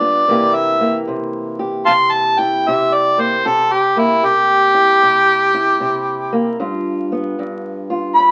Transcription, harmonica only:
Already playing: D5
0.55 E5
1.86 F5 A5 C6
2.13 A5
2.40 G5
2.69 E5
2.94 D5
3.21 C5
3.47 A4
3.72 G4
3.99 E4
4.25 G4
8.15 B5

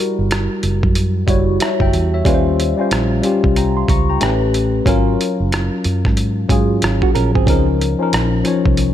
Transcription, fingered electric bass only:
0.19 G1
0.63 F#1
0.84 F#2
1.28 F#1
1.81 F#1
1.94 E2
2.26 D#2
2.92 A#1
3.45 C2
3.89 C#2
4.22 A1
4.87 G#1
5.40 F#1
5.85 F#2
6.06 G#2
6.50 G#2
6.83 G#1
7.16 A#1
7.36 G#1
7.48 C#2
8.13 A#1
8.66 C2

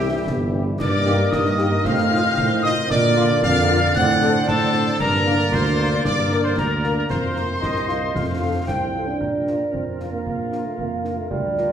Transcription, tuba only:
Already playing: C2
0.27 G1
0.79 G2
1.32 G2
1.84 A2
2.38 A2
2.90 A#2
3.42 F2
3.95 A2
4.48 A2
5.00 G2
5.52 D2
6.05 G2
6.57 D2
7.09 F2
7.62 C2
8.15 F2
8.67 C2
9.21 A#1
9.73 F2
10.25 A#1
10.79 F2
11.31 D2

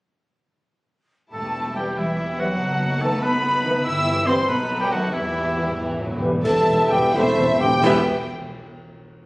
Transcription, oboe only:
1.33 A4
1.76 G4
1.98 E4
2.40 F#4
3.02 A4
3.23 B4
3.85 E5
4.27 C5
4.48 B4
4.80 G4
4.92 F#4
5.13 E4

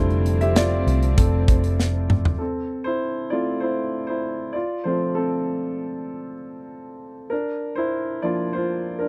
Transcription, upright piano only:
Already playing: D3 G3 A3 E4 F4 A4 C5 D5 E5
0.41 G4 E5
0.56 F4 D5
1.17 C4 A4
2.38 C4 A4
2.84 E4 C5
3.30 A3 C4 E4 F4 D5
3.60 E4 C5
4.07 E4 C5
4.53 F4 D5
4.84 F3 A3 C4 F4 C5
5.15 C4 A4
7.30 D4 A#4
7.75 E4 C5
8.22 F3 A#3 D4 F4 D5
8.53 F4 C5
8.99 D4 A#4

